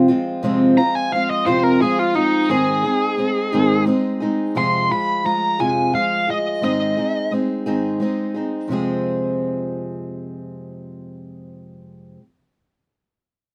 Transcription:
0.08 steel-string acoustic guitar F3 G#3 C4 F4
0.43 steel-string acoustic guitar F2 C3 F3 G#3 C4 F4
0.78 steel-string acoustic guitar F3 G#3 C4 F4, lead electric guitar A#5
0.95 lead electric guitar G#5
1.12 steel-string acoustic guitar F3 G#3 C4 F4, lead electric guitar F5
1.30 lead electric guitar D#5
1.46 steel-string acoustic guitar F2 C3 F3 G#3 C4 F4, lead electric guitar C5
1.63 lead electric guitar A#4
1.80 steel-string acoustic guitar F3 G#3 C4 F4, lead electric guitar G#4
1.99 lead electric guitar F4
2.14 steel-string acoustic guitar F3 G#3 C4 F4, lead electric guitar D#4
2.49 steel-string acoustic guitar G#2 D#3 G#3 C4 D#4 G#4, lead electric guitar G#4
2.83 steel-string acoustic guitar G#3 C4 D#4 G#4
3.17 steel-string acoustic guitar G#3 C4 D#4 G#4
3.52 steel-string acoustic guitar G#2 D#3 G#3 C4 D#4 G#4
3.85 steel-string acoustic guitar G#3 C4 D#4 G#4
4.20 steel-string acoustic guitar G#3 C4 D#4 G#4
4.55 steel-string acoustic guitar F2 C3 F3 G#3 F4 G#4, lead electric guitar C6
4.89 steel-string acoustic guitar G#3 F4 G#4, lead electric guitar B5
4.93 steel-string acoustic guitar F3
5.24 steel-string acoustic guitar F3 G#3 F4 G#4, lead electric guitar A#5
5.59 steel-string acoustic guitar F2 C3 F3 G#3 F4 G#4, lead electric guitar G#5
5.93 steel-string acoustic guitar F3 G#3 F4 G#4, lead electric guitar F5
6.27 steel-string acoustic guitar F3 G#3 F4 G#4, lead electric guitar D#5
6.61 steel-string acoustic guitar G#2 D#3 G#3 C4 D#4 G#4, lead electric guitar D#5
6.97 steel-string acoustic guitar G#3 C4 D#4 G#4
7.31 steel-string acoustic guitar G#3 C4 D#4 G#4
7.66 steel-string acoustic guitar G#2 D#3 G#3 C4 D#4 G#4
8.00 steel-string acoustic guitar G#3 C4 D#4 G#4
8.34 steel-string acoustic guitar G#3 C4 D#4 G#4
8.68 steel-string acoustic guitar F2 C3 F3
8.72 steel-string acoustic guitar G#3 C4 G#4

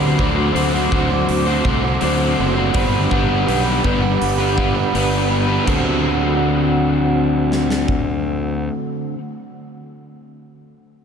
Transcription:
Already playing: fingered electric bass D2, overdriven electric guitar D3 F#3 A3 C4 D4 F#4 C5, ambient pad C5 F#5 D6
0.18 fingered electric bass D2, overdriven electric guitar A3 C4 D4 F#4 C5, kick
0.35 overdriven electric guitar A3 D4 F#4 C5
0.53 fingered electric bass D2, overdriven electric guitar D3 F#3 A3 C4 D4 F#4 C5, open hi-hat
0.74 overdriven electric guitar C4 F#4 C5
0.91 fingered electric bass D2, overdriven electric guitar A3 C4 D4 F#4 C5, kick
1.09 overdriven electric guitar C4 F#4 C5, muted overdriven electric guitar stroke
1.29 fingered electric bass D2, open hi-hat
1.46 overdriven electric guitar A3 C4 D4 F#4 C5
1.64 fingered electric bass C2, overdriven electric guitar A3 C4 D4 F#4 C5, kick
1.83 overdriven electric guitar C4 F#4 C5, muted overdriven electric guitar stroke
2.01 fingered electric bass D2, overdriven electric guitar D3 F#3 A3 C4 D4 F#4 C5, open hi-hat
2.38 fingered electric bass F#1, overdriven electric guitar A3 C4 F#4 C5
2.57 overdriven electric guitar A3 C4 D4 F#4 C5
2.74 fingered electric bass G1, overdriven electric guitar G3 B3 D4 G4 B4, ambient pad G4 B5, kick, open hi-hat
3.11 fingered electric bass G1, overdriven electric guitar G3 B3 D4 G4 B4, kick
3.29 overdriven electric guitar D4 G4 B4
3.47 fingered electric bass B1, overdriven electric guitar G3 B3 D4 G4 B4, open hi-hat
3.65 overdriven electric guitar B3 D4 B4
3.84 fingered electric bass G1, overdriven electric guitar G3 B3 D4 G4 B4, kick
4.02 overdriven electric guitar B3 D4 B4, muted overdriven electric guitar stroke
4.21 fingered electric bass G1, open hi-hat
4.39 overdriven electric guitar B3 D4 G4 B4
4.56 overdriven electric guitar G3 B3 D4 G4 B4, kick
4.75 overdriven electric guitar B3 D4 B4, muted overdriven electric guitar stroke
4.94 fingered electric bass G1, overdriven electric guitar G3 B3 D4 G4 B4, open hi-hat
5.29 overdriven electric guitar G3 B3 D4 B4
5.49 overdriven electric guitar B3 D4 G4 B4
5.65 fingered electric bass D2, overdriven electric guitar D3 A3 C4 A4, ambient pad D3 C4 F#5, kick, crash
5.70 overdriven electric guitar F#4
7.52 snare
7.70 snare
7.88 kick

